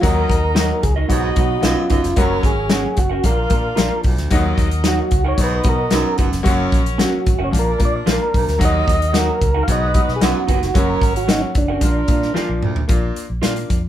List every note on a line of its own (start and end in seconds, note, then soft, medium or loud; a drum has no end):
0.01 0.41 D#2 medium
0.01 0.24 D#2 loud
0.01 0.36 F#3 loud
0.01 0.36 A#3 medium
0.01 0.36 D#4 medium
0.01 0.82 D#4 medium
0.01 0.36 F#4 loud
0.01 0.82 F#4 medium
0.01 0.85 A#4 loud
0.01 0.82 A#4 medium
0.01 0.82 D#5 medium
0.01 kick loud
0.01 closed hi-hat medium
0.29 0.71 D#2 medium
0.29 kick loud
0.29 closed hi-hat medium
0.55 0.90 F#3 medium
0.55 0.89 A#3 medium
0.55 0.68 D#4 medium
0.55 0.90 D#4 medium
0.55 0.68 F#4 medium
0.55 0.90 F#4 medium
0.55 0.69 A#4 medium
0.55 0.69 D#5 medium
0.55 snare loud
0.55 closed hi-hat medium
0.83 1.04 C#2 medium
0.83 0.95 G#4 medium
0.83 kick medium
0.83 closed hi-hat medium
0.96 1.07 D#4 medium
0.96 1.07 F#4 medium
0.96 1.06 A#4 medium
0.96 1.06 D#5 medium
1.08 1.30 B1 loud
1.08 1.32 G#2 medium
1.08 1.26 F#3 medium
1.08 1.26 B3 medium
1.08 1.26 D#4 medium
1.08 1.88 D#4 medium
1.08 1.64 F#4 medium
1.08 1.88 F#4 medium
1.08 1.26 F#4 medium
1.08 1.88 B4 medium
1.08 1.88 D#5 medium
1.08 kick medium
1.08 closed hi-hat loud
1.35 1.57 B2 loud
1.35 1.53 F#3 medium
1.35 1.53 B3 medium
1.35 1.54 D#4 medium
1.35 1.54 F#4 medium
1.35 kick loud
1.35 closed hi-hat medium
1.61 1.74 B1 medium
1.61 1.85 F#2 loud
1.61 1.96 F#3 medium
1.61 1.97 B3 medium
1.61 1.97 D#4 medium
1.61 1.76 D#4 medium
1.61 2.18 F4 medium
1.61 1.76 F#4 medium
1.61 1.76 B4 medium
1.61 1.77 D#5 loud
1.61 snare loud
1.61 closed hi-hat medium
1.90 2.00 F#1 medium
1.90 2.12 F#2 medium
1.90 2.00 D#4 medium
1.90 2.00 F#4 medium
1.90 2.00 B4 medium
1.90 2.01 D#5 medium
1.90 kick medium
1.90 closed hi-hat medium
2.03 2.14 F1 medium
2.03 snare soft
2.03 closed hi-hat medium
2.16 2.38 F#1 loud
2.16 2.54 F#2 medium
2.16 2.51 F#3 loud
2.16 2.50 A#3 medium
2.16 2.95 C#4 medium
2.16 2.51 C#4 medium
2.16 2.95 F#4 medium
2.16 2.51 F#4 loud
2.16 2.96 A#4 medium
2.16 2.42 A#4 loud
2.16 2.95 C#5 medium
2.16 kick loud
2.16 closed hi-hat medium
2.43 2.85 G#1 loud
2.43 3.00 G#4 medium
2.43 kick medium
2.43 closed hi-hat medium
2.70 3.04 F#3 medium
2.70 3.04 A#3 medium
2.70 2.83 C#4 loud
2.70 3.04 C#4 medium
2.70 2.83 F#4 medium
2.70 3.05 F#4 medium
2.70 2.83 A#4 loud
2.70 2.84 F#5 loud
2.70 snare loud
2.70 closed hi-hat medium
2.97 3.18 F#1 medium
2.97 3.25 F#4 medium
2.97 kick medium
2.97 closed hi-hat medium
3.10 3.21 C#4 soft
3.10 3.21 F#4 medium
3.10 3.21 A#4 medium
3.10 3.20 F#5 medium
3.23 3.45 A#1 loud
3.23 3.41 F3 medium
3.23 3.41 A#3 medium
3.23 3.41 D4 medium
3.23 3.41 F4 medium
3.23 4.04 F4 medium
3.23 4.03 A#4 medium
3.23 4.01 A#4 medium
3.23 4.03 D5 medium
3.23 4.04 F5 medium
3.23 kick medium
3.23 closed hi-hat loud
3.49 3.71 A#2 loud
3.49 3.67 F3 medium
3.49 3.67 A#3 medium
3.49 3.67 D4 medium
3.49 3.68 F4 medium
3.49 kick loud
3.49 closed hi-hat medium
3.76 3.88 A#1 medium
3.76 4.11 F3 medium
3.76 4.11 A#3 medium
3.76 4.11 D4 medium
3.76 3.89 F4 medium
3.76 4.12 F4 medium
3.76 3.90 A#4 medium
3.76 3.90 D5 medium
3.76 3.90 F5 medium
3.76 snare loud
3.76 closed hi-hat medium
4.03 4.15 B1 medium
4.03 4.26 D2 medium
4.03 kick medium
4.03 open hi-hat medium
4.18 4.28 D2 medium
4.18 snare soft
4.18 closed hi-hat medium
4.30 4.69 D#2 medium
4.30 4.52 D#2 loud
4.30 4.65 F#3 loud
4.30 4.65 A#3 loud
4.30 4.66 D#4 loud
4.30 5.11 D#4 medium
4.30 5.10 F#4 medium
4.30 4.66 F#4 loud
4.30 5.11 A#4 medium
4.30 5.11 D#5 medium
4.30 kick loud
4.30 closed hi-hat medium
4.58 4.99 D#2 medium
4.58 kick medium
4.58 closed hi-hat medium
4.71 closed hi-hat medium
4.84 5.19 F#3 medium
4.84 5.19 A#3 medium
4.84 4.97 D#4 medium
4.84 5.19 D#4 medium
4.84 4.97 F#4 medium
4.84 5.19 F#4 medium
4.84 4.98 A#4 medium
4.84 4.98 F#5 medium
4.84 snare loud
4.84 closed hi-hat loud
4.88 5.24 F#4 medium
5.11 5.33 C#2 medium
5.11 kick medium
5.11 closed hi-hat medium
5.24 5.35 D#4 medium
5.24 5.35 F#4 medium
5.24 5.35 A#4 medium
5.24 5.40 C#5 loud
5.24 5.35 F#5 medium
5.37 5.59 B1 loud
5.37 5.60 G#2 medium
5.37 5.55 F#3 medium
5.37 5.55 B3 medium
5.37 6.18 B3 medium
5.37 5.56 D#4 medium
5.37 6.18 D#4 medium
5.37 5.56 F#4 medium
5.37 6.18 F#4 medium
5.37 6.18 D#5 medium
5.37 kick medium
5.37 closed hi-hat loud
5.44 5.69 B4 loud
5.63 5.86 B2 medium
5.63 5.81 F#3 medium
5.63 5.82 B3 medium
5.63 5.82 D#4 medium
5.63 5.82 F#4 medium
5.63 kick loud
5.63 closed hi-hat medium
5.69 6.17 A#4 loud
5.90 6.02 B1 medium
5.90 6.14 F#2 loud
5.90 6.25 F#3 medium
5.90 6.25 B3 medium
5.90 6.26 D#4 medium
5.90 6.04 D#4 medium
5.90 6.26 F#4 medium
5.90 6.05 F#4 medium
5.90 6.05 B4 medium
5.90 6.06 F#5 loud
5.90 snare loud
5.90 closed hi-hat medium
6.18 6.29 F#1 medium
6.18 6.40 F#2 medium
6.18 6.28 D#4 medium
6.18 6.29 F#4 medium
6.18 6.29 B4 medium
6.18 6.29 F#5 medium
6.18 kick medium
6.18 closed hi-hat medium
6.32 6.42 F1 loud
6.32 snare soft
6.32 closed hi-hat medium
6.43 6.66 F#1 loud
6.43 6.84 F#2 medium
6.43 6.78 F#3 loud
6.43 6.78 A#3 loud
6.43 6.79 C#4 loud
6.43 7.24 C#4 medium
6.43 6.79 F#4 loud
6.43 7.25 F#4 medium
6.43 7.24 A#4 medium
6.43 7.24 C#5 medium
6.43 kick loud
6.43 closed hi-hat medium
6.72 7.03 A#1 medium
6.72 kick loud
6.72 closed hi-hat medium
6.86 closed hi-hat medium
6.98 7.33 F#3 medium
6.98 7.33 A#3 medium
6.98 7.11 C#4 medium
6.98 7.33 C#4 medium
6.98 7.12 F#4 medium
6.98 7.34 F#4 medium
6.98 7.12 A#4 medium
6.98 7.12 F#5 medium
6.98 snare loud
6.98 closed hi-hat medium
7.05 7.43 F#4 loud
7.26 7.37 G#1 medium
7.26 kick loud
7.26 closed hi-hat medium
7.39 7.50 F#1 medium
7.39 7.50 C#4 medium
7.39 7.49 F#4 medium
7.39 7.49 A#4 medium
7.39 7.49 F#5 medium
7.44 7.49 C#5 medium
7.51 7.74 A#1 loud
7.51 7.69 F3 medium
7.51 7.69 A#3 medium
7.51 7.70 D4 medium
7.51 8.32 D4 medium
7.51 7.70 F4 medium
7.51 8.32 F4 medium
7.51 8.32 A#4 medium
7.51 8.32 D5 medium
7.51 kick medium
7.51 closed hi-hat loud
7.59 7.81 A#4 loud
7.78 8.01 A#2 loud
7.78 7.96 F3 medium
7.78 7.96 A#3 medium
7.78 7.96 D4 medium
7.78 7.97 F4 medium
7.78 kick loud
7.78 closed hi-hat medium
7.85 7.96 D5 medium
8.06 8.17 A#1 loud
8.06 8.40 F3 medium
8.06 8.40 A#3 medium
8.06 8.41 D4 medium
8.06 8.19 F4 medium
8.06 8.41 F4 medium
8.06 8.19 A#4 medium
8.06 8.20 D5 medium
8.06 8.20 F5 medium
8.06 snare loud
8.06 closed hi-hat medium
8.12 8.65 A#4 loud
8.34 8.44 B1 loud
8.34 8.56 D2 medium
8.34 kick medium
8.34 open hi-hat medium
8.47 8.57 D2 loud
8.47 snare soft
8.47 closed hi-hat medium
8.58 8.81 D#2 loud
8.58 8.99 D#2 medium
8.58 8.93 F#3 loud
8.58 8.94 A#3 loud
8.58 8.94 D#4 medium
8.58 9.40 D#4 medium
8.58 8.94 F#4 loud
8.58 9.40 F#4 medium
8.58 9.40 D#5 medium
8.58 kick loud
8.58 closed hi-hat medium
8.63 9.40 A#4 medium
8.63 9.18 D#5 loud
8.88 9.29 D#2 medium
8.88 kick loud
8.88 closed hi-hat medium
9.02 closed hi-hat medium
9.12 9.47 F#3 medium
9.12 9.48 A#3 medium
9.12 9.48 D#4 medium
9.12 9.27 D#4 medium
9.12 9.48 F#4 medium
9.12 9.27 F#4 medium
9.12 9.27 A#4 medium
9.12 9.28 F#5 medium
9.12 snare loud
9.12 closed hi-hat loud
9.18 9.64 A#4 loud
9.41 9.62 C#2 medium
9.41 kick medium
9.41 closed hi-hat medium
9.54 9.65 D#4 medium
9.54 9.65 F#4 medium
9.54 9.64 A#4 medium
9.54 9.64 F#5 medium
9.63 9.69 F5 medium
9.67 9.98 B1 loud
9.67 9.89 G#2 medium
9.67 9.85 F#3 medium
9.67 9.85 B3 medium
9.67 10.47 B3 medium
9.67 10.47 D#4 medium
9.67 9.85 D#4 medium
9.67 10.47 F#4 medium
9.67 9.85 F#4 medium
9.67 10.47 B4 medium
9.67 kick medium
9.67 closed hi-hat loud
9.72 10.13 D#5 loud
9.94 10.11 F#3 medium
9.94 10.12 B3 medium
9.94 10.12 D#4 medium
9.94 10.12 F#4 medium
9.94 kick loud
9.94 closed hi-hat medium
10.08 10.19 B2 medium
10.08 snare soft
10.16 10.22 G#4 medium
10.20 10.32 B1 medium
10.20 10.43 F#2 loud
10.20 10.55 F#3 medium
10.20 10.55 B3 medium
10.20 10.55 D#4 medium
10.20 10.34 D#4 medium
10.20 10.55 F#4 medium
10.20 10.34 F#4 medium
10.20 10.77 F#4 loud
10.20 10.35 B4 medium
10.20 10.35 F#5 medium
10.20 snare loud
10.20 closed hi-hat loud
10.47 10.59 F#1 medium
10.47 10.70 D#2 medium
10.47 10.58 D#4 medium
10.47 10.58 F#4 medium
10.47 10.58 B4 medium
10.47 10.58 F#5 medium
10.47 kick medium
10.47 closed hi-hat medium
10.61 10.72 F1 medium
10.61 snare soft
10.61 closed hi-hat medium
10.74 10.96 F#1 loud
10.74 11.13 F#2 medium
10.74 11.08 F#3 loud
10.74 11.09 A#3 medium
10.74 11.09 C#4 medium
10.74 11.54 C#4 medium
10.74 11.09 F#4 loud
10.74 11.54 F#4 medium
10.74 11.54 A#4 medium
10.74 11.14 A#4 loud
10.74 11.54 C#5 medium
10.74 kick loud
10.74 closed hi-hat medium
11.02 11.43 G#1 medium
11.02 kick loud
11.02 closed hi-hat medium
11.16 11.30 F#4 medium
11.16 closed hi-hat medium
11.27 11.62 F#3 medium
11.27 11.62 A#3 medium
11.27 11.62 C#4 medium
11.27 11.41 C#4 medium
11.27 11.42 D#4 medium
11.27 11.41 F#4 medium
11.27 11.63 F#4 medium
11.27 11.41 A#4 medium
11.27 11.42 F#5 loud
11.27 snare loud
11.27 closed hi-hat medium
11.55 11.76 F#1 medium
11.55 12.33 D4 medium
11.55 kick loud
11.55 closed hi-hat medium
11.68 11.79 C#4 medium
11.68 11.79 F#4 medium
11.68 11.79 A#4 medium
11.68 11.78 F#5 medium
11.81 12.02 A#1 medium
11.81 11.98 F3 medium
11.81 11.99 A#3 medium
11.81 12.62 A#3 medium
11.81 11.99 D4 medium
11.81 12.61 D4 medium
11.81 11.99 F4 medium
11.81 12.61 F4 medium
11.81 12.62 A#4 medium
11.81 kick medium
11.81 closed hi-hat loud
12.08 12.29 A#2 loud
12.08 12.25 F3 medium
12.08 12.26 A#3 medium
12.08 12.26 D4 medium
12.08 12.26 F4 medium
12.08 kick loud
12.08 closed hi-hat medium
12.22 snare soft
12.34 12.69 F3 medium
12.34 12.69 A#3 medium
12.34 12.69 D4 medium
12.34 12.69 F4 loud
12.34 12.48 F4 medium
12.34 12.48 A#4 medium
12.34 12.49 D5 medium
12.34 12.49 F5 medium
12.34 muted fingered electric bass stroke soft
12.34 snare medium
12.49 12.60 A#1 medium
12.63 12.84 D2 medium
12.63 12.83 A#2 loud
12.63 mid tom medium
12.76 floor tom loud
12.88 13.10 A#1 loud
12.88 13.27 A#2 medium
12.88 13.23 A#3 medium
12.88 13.23 D4 medium
12.88 13.23 F4 loud
12.88 kick loud
12.88 closed hi-hat medium
13.16 closed hi-hat medium
13.30 13.40 A#1 medium
13.42 13.64 A#2 loud
13.42 13.77 A#3 medium
13.42 13.77 D4 medium
13.42 13.55 F4 medium
13.42 13.77 F4 loud
13.42 13.55 A#4 medium
13.42 13.56 D5 medium
13.42 13.56 F5 medium
13.42 snare loud
13.42 closed hi-hat medium
13.56 closed hi-hat medium
13.70 13.89 F2 medium
13.70 kick medium
13.70 closed hi-hat medium